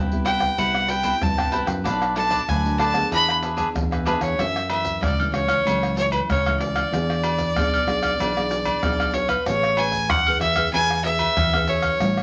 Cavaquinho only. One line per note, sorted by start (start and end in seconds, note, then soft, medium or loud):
0.00 0.24 E4 soft
0.00 0.25 B4 medium
0.00 0.25 C5 medium
0.00 0.26 G5 medium
0.25 0.41 E4 medium
0.25 0.40 B4 medium
0.25 0.41 C5 medium
0.25 0.39 G5 medium
0.40 0.57 B4 soft
0.40 0.57 C5 soft
0.40 0.56 G5 soft
0.58 0.87 E4 medium
0.58 0.89 B4 medium
0.58 0.88 C5 medium
0.88 1.02 E4 medium
0.88 1.03 B4 medium
0.88 1.03 C5 medium
0.88 1.04 G5 medium
1.04 1.14 E4 medium
1.04 1.14 B4 medium
1.04 1.14 C5 medium
1.04 1.15 G5 medium
1.38 1.52 B4 soft
1.38 1.51 C5 soft
1.38 1.52 G5 medium
1.51 1.67 E4 medium
1.51 1.66 B4 medium
1.51 1.67 C5 medium
1.51 1.65 G5 medium
1.66 1.83 B4 soft
1.66 1.84 C5 soft
1.66 1.83 G5 soft
1.84 2.14 D4 medium
1.84 2.15 A4 medium
1.84 2.15 B4 medium
1.84 2.16 D5 medium
2.15 2.29 D4 medium
2.15 2.29 A4 medium
2.15 2.30 B4 medium
2.15 2.30 D5 soft
2.30 2.41 D4 medium
2.30 2.41 A4 medium
2.30 2.41 B4 medium
2.30 2.41 D5 medium
2.48 2.77 D4 medium
2.48 2.78 A4 medium
2.48 2.79 B4 medium
2.48 2.79 D5 medium
2.78 2.94 D4 medium
2.78 2.94 A4 medium
2.78 2.93 B4 medium
2.78 2.92 D5 medium
2.95 3.11 A4 soft
3.11 3.41 D4 medium
3.11 3.42 G#4 medium
3.11 3.42 B4 medium
3.11 3.43 E5 medium
3.42 3.55 D4 soft
3.42 3.56 G#4 medium
3.42 3.56 B4 medium
3.42 3.57 E5 medium
3.56 3.67 D4 medium
3.56 3.67 G#4 medium
3.56 3.68 B4 medium
3.56 3.68 E5 medium
3.91 4.05 G#4 soft
3.91 4.06 B4 soft
3.91 4.06 E5 medium
4.05 4.21 D4 medium
4.05 4.20 G#4 medium
4.05 4.20 B4 medium
4.05 4.18 E5 medium
4.20 4.36 E5 soft